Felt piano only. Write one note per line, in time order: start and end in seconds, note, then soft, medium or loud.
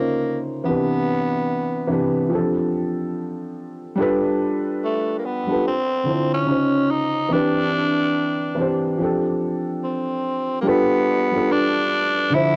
0.00 0.61 C#3 medium
0.00 0.62 C#4 medium
0.00 0.63 D#4 medium
0.00 0.64 F4 medium
0.00 0.64 C5 medium
0.64 1.85 C3 medium
0.64 1.84 E3 medium
0.64 1.86 D4 medium
0.68 1.86 G4 medium
0.68 1.87 B4 medium
1.87 2.31 C3 medium
1.87 2.30 E3 medium
1.87 2.31 D4 medium
1.92 2.32 G4 medium
1.92 2.33 B4 medium
2.29 3.90 F3 medium
2.29 3.91 C4 medium
2.29 3.91 D4 medium
2.33 3.92 G4 medium
2.33 3.93 A4 medium
3.95 5.38 G3 loud
3.95 5.38 D4 loud
3.95 5.39 F4 medium
4.00 5.40 A4 loud
4.00 5.41 B4 loud
5.47 5.64 G3 medium
5.47 5.65 D4 medium
5.47 5.65 F4 medium
5.51 5.66 A4 medium
5.51 5.67 B4 medium
6.04 6.47 D3 medium
6.04 6.48 D4 medium
6.04 6.49 E4 medium
6.08 6.48 F4 medium
6.08 6.50 C5 medium
6.45 7.27 C#3 medium
6.45 7.27 C#4 medium
6.45 7.28 D#4 medium
6.50 7.29 F4 medium
6.50 7.30 C5 medium
7.29 8.50 E3 medium
7.29 8.51 C4 medium
7.29 8.52 D4 medium
7.33 8.52 G4 medium
7.33 8.53 B4 loud
8.55 8.98 E3 medium
8.55 8.97 C4 medium
8.55 8.99 D4 medium
8.59 9.00 G4 medium
8.59 9.01 C5 medium
8.97 10.57 F3 medium
8.97 10.58 C4 medium
8.97 10.59 D4 medium
9.02 10.60 G4 medium
9.02 10.60 A4 medium
10.63 11.27 G3 medium
10.63 11.28 D4 medium
10.63 11.29 F4 medium
10.67 11.29 A4 medium
10.67 11.30 B4 loud
11.31 12.31 G3 medium
11.31 12.30 D4 medium
11.31 12.33 F4 medium
11.36 12.34 A4 medium
11.36 12.34 B4 medium
12.30 12.56 D3 medium
12.30 12.56 D4 medium
12.30 12.56 E4 medium
12.35 12.56 F3 medium
12.35 12.56 C5 medium